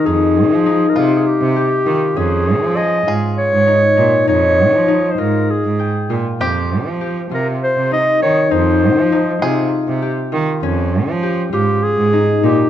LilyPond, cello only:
\new Staff \with { instrumentName = "Cello" } { \clef bass \time 7/8 \key f \minor \tempo 4 = 100 f,8. f8. c8 r16 c8 r16 ees16 r16 | f,8. f8. aes,8 r16 aes,8 r16 bes,16 r16 | f,8. f8. aes,8 r16 aes,8 r16 bes,16 r16 | f,8. f8. c8 r16 c8 r16 ees16 r16 |
f,8. f8. c8 r16 c8 r16 ees16 r16 | f,8. f8. aes,8 r16 aes,8 r16 bes,16 r16 | }